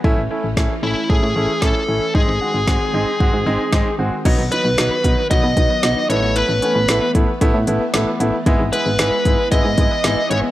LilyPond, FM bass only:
\new Staff \with { instrumentName = "FM bass" } { \clef bass \time 4/4 \key a \lydian \tempo 4 = 114 a,,16 a,,16 r16 a,,16 a,,16 r16 a,,16 r16 a,,16 a,16 a,,16 r16 a,,16 r16 a,,16 r16 | gis,,16 gis,,16 r16 gis,,16 gis,,16 r16 gis,,16 r16 gis,,16 gis,16 gis,,16 r16 gis,,16 r16 gis,,16 r16 | b,,16 b,,16 r16 b,,16 b,,16 r16 b,,16 r16 b,,16 b,16 b,,16 r16 b,,16 r16 a,,8~ | a,,16 a,,16 r16 a,,16 a,,16 r16 a,,16 r16 a,,16 a,16 a,,16 r16 a,,16 r16 a,,16 r16 |
gis,,16 gis,,16 r16 gis,,16 gis,,16 r16 gis,,16 r16 gis,,16 gis,16 gis,,16 r16 gis,,16 r16 gis,,16 r16 | }